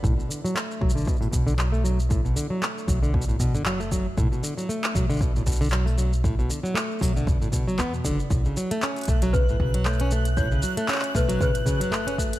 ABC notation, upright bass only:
X:1
M:4/4
L:1/16
Q:"Swing 16ths" 1/4=116
K:Bm
V:1 name="Upright bass" clef=bass
B,,, z4 z B,,,4 B,,,6- | B,,,2 z4 B,,,4- B,,, F,,,4- F,,, | B,,, z4 z B,,,4 B,,,6- | B,,,2 z4 B,,,2 F,,,4 E,, z F,,, z |
B,,, z4 z B,,,4 B,,,6- | B,,,2 z4 B,,,4- B,,, F,,,4- F,,, |]